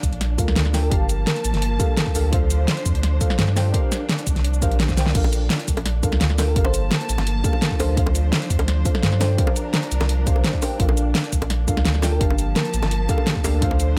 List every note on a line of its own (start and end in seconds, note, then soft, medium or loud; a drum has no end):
0.00 0.12 C2 loud
0.00 0.36 D4 medium
0.00 0.88 D4 medium
0.00 0.36 F4 medium
0.00 0.37 A4 medium
0.00 0.37 A#4 medium
0.00 0.37 F5 loud
0.00 kick medium
0.00 closed hi-hat medium
0.00 shaker medium
0.12 0.37 A#1 loud
0.12 closed hi-hat soft
0.21 snare soft
0.21 closed hi-hat loud
0.37 0.90 D2 medium
0.37 0.71 D4 medium
0.37 0.72 F4 medium
0.37 0.72 A4 medium
0.37 0.72 A#4 medium
0.37 0.72 F5 medium
0.37 kick loud
0.37 closed hi-hat medium
0.37 shaker medium
0.48 snare medium
0.56 snare loud
0.56 closed hi-hat medium
0.66 snare soft
0.73 0.89 D4 medium
0.73 0.89 F4 medium
0.73 0.89 A4 medium
0.73 0.90 A#4 medium
0.73 0.90 G5 medium
0.73 snare soft
0.73 open hi-hat medium
0.73 shaker medium
0.83 0.95 A#4 medium
0.90 1.25 G1 medium
0.90 5.11 F3 medium
0.90 2.31 A#3 medium
0.90 1.77 D4 loud
0.90 1.77 G4 medium
0.90 1.78 A#4 medium
0.90 1.78 F5 loud
0.90 1.78 A5 medium
0.90 2.31 A5 medium
0.90 kick loud
0.90 closed hi-hat loud
1.09 closed hi-hat medium
1.09 shaker medium
1.27 1.77 A#4 medium
1.27 snare loud
1.27 closed hi-hat medium
1.36 closed hi-hat soft
1.45 1.53 A1 loud
1.45 closed hi-hat medium
1.45 shaker medium
1.54 1.78 G1 loud
1.54 snare soft
1.54 closed hi-hat soft
1.62 closed hi-hat loud
1.79 2.13 D4 medium
1.79 2.13 G4 medium
1.79 2.13 A4 medium
1.79 2.13 A#4 medium
1.79 2.13 F5 loud
1.79 kick loud
1.79 closed hi-hat medium
1.79 shaker medium
1.97 snare loud
1.97 closed hi-hat medium
2.07 kick medium
2.15 2.67 D2 loud
2.15 2.30 D4 medium
2.15 2.31 G4 medium
2.15 2.31 A4 medium
2.15 2.31 A#4 medium
2.15 2.31 F5 medium
2.15 open hi-hat medium
2.15 shaker medium
2.31 3.18 D4 medium
2.31 6.52 D4 medium
2.31 3.18 F4 medium
2.31 3.19 A4 medium
2.31 3.72 C5 medium
2.31 3.19 C5 medium
2.31 3.20 F5 loud
2.31 kick loud
2.31 closed hi-hat loud
2.50 closed hi-hat medium
2.50 shaker medium
2.68 snare loud
2.68 closed hi-hat medium
2.77 closed hi-hat soft
2.86 2.94 F2 medium
2.86 kick medium
2.86 closed hi-hat medium
2.86 shaker medium
2.95 3.20 D2 loud
2.95 closed hi-hat soft
3.03 snare soft
3.03 closed hi-hat loud
3.20 3.54 D4 medium
3.20 3.54 F4 medium
3.20 3.54 A4 medium
3.20 3.54 C5 medium
3.20 3.55 F5 medium
3.20 kick loud
3.20 closed hi-hat medium
3.20 shaker medium
3.30 snare medium
3.39 3.73 G2 loud
3.39 snare loud
3.39 closed hi-hat loud
3.48 snare soft
3.56 3.71 D4 medium
3.56 3.72 F4 medium
3.56 3.72 A4 medium
3.56 3.72 C5 medium
3.56 3.72 G5 medium
3.56 snare soft
3.56 open hi-hat medium
3.56 shaker medium
3.72 4.59 D4 loud
3.72 4.60 G4 medium
3.72 4.60 A#4 medium
3.72 4.60 C5 medium
3.72 4.61 F5 loud
3.72 kick loud
3.72 closed hi-hat loud
3.92 snare medium
3.92 closed hi-hat medium
3.92 shaker medium
4.09 snare loud
4.09 closed hi-hat medium
4.19 closed hi-hat soft
4.19 shaker soft
4.27 4.35 C2 medium
4.27 kick medium
4.27 closed hi-hat medium
4.27 shaker medium
4.36 4.64 C2 loud
4.36 snare soft
4.36 closed hi-hat soft
4.45 closed hi-hat loud
4.54 shaker soft
4.61 4.99 A#1 loud
4.61 4.95 D4 medium
4.61 4.95 G4 medium
4.61 4.95 A#4 medium
4.61 4.96 C5 medium
4.61 4.96 F5 loud
4.61 kick loud
4.61 closed hi-hat medium
4.61 shaker medium
4.71 closed hi-hat soft
4.80 snare loud
4.80 closed hi-hat loud
4.89 kick medium
4.89 snare soft
4.89 shaker soft
4.97 5.13 C2 loud
4.97 5.13 D4 medium
4.97 5.13 G4 medium
4.97 5.13 A#4 medium
4.97 5.13 C5 medium
4.97 5.14 G5 medium
4.97 snare medium
4.97 open hi-hat medium
4.97 shaker medium
5.06 snare medium
5.14 5.49 A#1 loud
5.14 6.01 D4 medium
5.14 6.01 F4 medium
5.14 6.01 A4 medium
5.14 6.02 A#4 medium
5.14 6.02 F5 loud
5.14 kick loud
5.14 closed hi-hat loud
5.14 crash medium
5.24 high bongo medium
5.33 closed hi-hat medium
5.33 shaker medium
5.50 snare loud
5.50 closed hi-hat medium
5.50 high bongo medium
5.60 closed hi-hat soft
5.68 5.76 C2 medium
5.68 kick medium
5.68 closed hi-hat medium
5.68 shaker medium
5.77 6.02 A#1 loud
5.77 closed hi-hat soft
5.77 high bongo medium
5.86 snare medium
5.86 closed hi-hat loud
6.03 6.58 D2 medium
6.03 6.36 D4 medium
6.03 6.36 F4 medium
6.03 6.37 A4 medium
6.03 6.37 A#4 medium
6.03 6.37 F5 medium
6.03 kick loud
6.03 closed hi-hat medium
6.03 shaker medium
6.12 snare medium
6.12 high bongo medium
6.21 snare loud
6.21 closed hi-hat loud
6.30 snare soft
6.38 6.54 D4 medium
6.38 6.54 F4 medium
6.38 6.54 A4 medium
6.38 6.54 A#4 medium
6.38 6.55 G5 loud
6.38 snare soft
6.38 open hi-hat medium
6.38 high bongo medium
6.38 shaker medium
6.48 6.60 A#4 medium
6.55 6.90 G1 medium
6.55 9.36 F3 medium
6.55 7.96 A#3 medium
6.55 7.42 D4 loud
6.55 7.42 G4 medium
6.55 7.42 A4 medium
6.55 7.43 A#4 medium
6.55 7.43 F5 loud
6.55 7.96 A5 medium
6.55 kick loud
6.55 closed hi-hat loud
6.65 6.87 C5 medium
6.65 high bongo loud
6.74 closed hi-hat medium
6.74 shaker medium
6.91 snare loud
6.91 closed hi-hat medium
6.91 high bongo medium
7.01 closed hi-hat soft
7.09 7.18 A1 medium
7.09 closed hi-hat medium
7.09 shaker medium
7.18 7.43 G1 loud
7.18 snare soft
7.18 closed hi-hat soft
7.18 high bongo loud
7.27 closed hi-hat loud
7.43 7.77 D4 medium
7.43 7.77 G4 medium
7.43 7.78 A4 medium
7.43 7.78 A#4 medium
7.43 7.78 F5 medium
7.43 kick loud
7.43 closed hi-hat medium
7.43 shaker medium
7.53 high bongo medium
7.62 snare loud
7.62 closed hi-hat medium
7.71 kick medium
7.79 8.31 D2 loud
7.79 7.95 D4 medium
7.79 7.95 G4 medium
7.79 7.95 A4 medium
7.79 7.96 A#4 medium
7.79 7.86 C5 medium
7.79 7.96 F5 medium
7.79 open hi-hat medium
7.79 high bongo medium
7.79 shaker medium
7.89 7.94 C5 medium
7.96 8.83 D4 loud
7.96 12.17 D4 medium
7.96 8.83 F4 medium
7.96 8.84 A4 medium
7.96 9.37 C5 medium
7.96 8.84 C5 medium
7.96 8.84 F5 loud
7.96 kick loud
7.96 closed hi-hat loud
8.07 high bongo medium
8.15 closed hi-hat medium
8.15 shaker medium
8.32 snare loud
8.32 closed hi-hat medium
8.32 high bongo medium
8.42 closed hi-hat soft
8.50 8.59 F2 medium
8.50 kick medium
8.50 closed hi-hat medium
8.50 shaker medium
8.59 8.84 D2 loud
8.59 closed hi-hat soft
8.59 high bongo medium
8.68 snare medium
8.68 closed hi-hat loud
8.85 9.18 D4 medium
8.85 9.19 F4 medium
8.85 9.19 A4 medium
8.85 9.19 C5 medium
8.85 9.19 F5 medium
8.85 kick loud
8.85 closed hi-hat medium
8.85 shaker medium
8.95 snare medium
8.95 high bongo medium
9.03 9.37 G2 loud
9.03 snare loud
9.03 closed hi-hat medium
9.12 snare soft
9.20 9.36 D4 medium
9.20 9.36 F4 medium
9.20 9.36 A4 medium
9.20 9.37 C5 medium
9.20 9.37 G5 loud
9.20 snare soft
9.20 open hi-hat medium
9.20 high bongo medium
9.20 shaker medium
9.37 10.78 F3 medium
9.37 10.24 D4 loud
9.37 10.24 G4 medium
9.37 10.25 A#4 medium
9.37 10.79 A#4 medium
9.37 10.25 C5 medium
9.37 10.26 F5 loud
9.37 kick loud
9.37 closed hi-hat medium
9.47 high bongo loud
9.56 closed hi-hat medium
9.56 shaker medium
9.74 snare loud
9.74 closed hi-hat medium
9.74 high bongo medium
9.83 closed hi-hat soft
9.91 10.00 C2 medium
9.91 closed hi-hat medium
9.91 shaker medium
10.01 10.26 C2 loud
10.01 snare soft
10.01 closed hi-hat soft
10.01 high bongo loud
10.09 closed hi-hat medium
10.26 10.43 C2 medium
10.26 10.60 D4 medium
10.26 10.60 G4 medium
10.26 10.60 A#4 medium
10.26 10.60 C5 medium
10.26 10.60 F5 loud
10.26 kick loud
10.26 closed hi-hat medium
10.26 shaker medium
10.36 high bongo medium
10.44 snare loud
10.44 closed hi-hat medium
10.54 kick medium
10.62 10.77 D4 medium
10.62 10.78 G4 medium
10.62 10.78 A#4 medium
10.62 10.78 C5 medium
10.62 10.78 G5 medium
10.62 open hi-hat medium
10.62 high bongo medium
10.62 shaker medium
10.78 11.14 A#1 loud
10.78 11.65 D4 medium
10.78 11.66 F4 medium
10.78 11.66 A4 medium
10.78 11.66 A#4 medium
10.78 11.67 F5 loud
10.78 kick loud
10.78 closed hi-hat loud
10.89 high bongo loud
10.97 closed hi-hat medium
10.97 shaker medium
11.15 snare loud
11.15 closed hi-hat medium
11.15 high bongo medium
11.24 closed hi-hat soft
11.33 11.41 C2 medium
11.33 kick medium
11.33 closed hi-hat medium
11.33 shaker medium
11.42 11.67 A#1 loud
11.42 closed hi-hat soft
11.42 high bongo medium
11.50 snare soft
11.50 closed hi-hat medium
11.67 12.20 D2 medium
11.67 12.01 D4 medium
11.67 12.01 F4 medium
11.67 12.01 A4 medium
11.67 12.01 A#4 medium
11.67 12.02 F5 medium
11.67 kick loud
11.67 closed hi-hat medium
11.67 shaker medium
11.77 snare medium
11.77 high bongo medium
11.85 snare loud
11.85 closed hi-hat medium
11.95 snare soft
12.02 12.18 D4 medium
12.02 12.19 F4 medium
12.02 12.19 A4 medium
12.02 12.19 A#4 medium
12.02 12.19 G5 medium
12.02 snare soft
12.02 open hi-hat medium
12.02 high bongo loud
12.02 shaker medium
12.12 12.25 A#4 medium
12.19 12.55 G1 medium
12.19 13.61 F3 medium
12.19 13.61 A#3 medium
12.19 13.06 D4 loud
12.19 13.07 G4 medium
12.19 13.08 A#4 medium
12.19 13.08 F5 loud
12.19 13.61 A5 medium
12.19 13.07 A5 medium
12.19 kick loud
12.19 closed hi-hat loud
12.30 high bongo medium
12.39 closed hi-hat medium
12.39 shaker medium
12.56 13.06 A#4 medium
12.56 snare loud
12.56 closed hi-hat medium
12.56 high bongo medium
12.65 closed hi-hat soft
12.74 12.82 A1 medium
12.74 closed hi-hat medium
12.74 shaker medium
12.82 13.08 G1 loud
12.82 snare soft
12.82 closed hi-hat soft
12.82 high bongo medium
12.91 closed hi-hat medium
13.09 13.42 D4 medium
13.09 13.42 G4 medium
13.09 13.43 A4 medium
13.09 13.43 A#4 medium
13.09 13.43 F5 loud
13.09 kick loud
13.09 closed hi-hat medium
13.09 shaker medium
13.18 high bongo medium
13.27 snare loud
13.27 closed hi-hat medium
13.36 kick medium
13.44 13.96 D2 loud
13.44 13.60 D4 medium
13.44 13.60 G4 medium
13.44 13.60 A4 medium
13.44 13.60 A#4 medium
13.44 13.60 F5 medium
13.44 open hi-hat medium
13.44 high bongo loud
13.44 shaker medium
13.61 13.99 F3 medium
13.61 13.99 D4 medium
13.61 13.99 F4 medium
13.61 13.99 A4 medium
13.61 13.99 C5 medium
13.61 13.99 F5 loud
13.61 kick loud
13.61 closed hi-hat loud
13.71 high bongo medium
13.80 closed hi-hat medium
13.80 shaker medium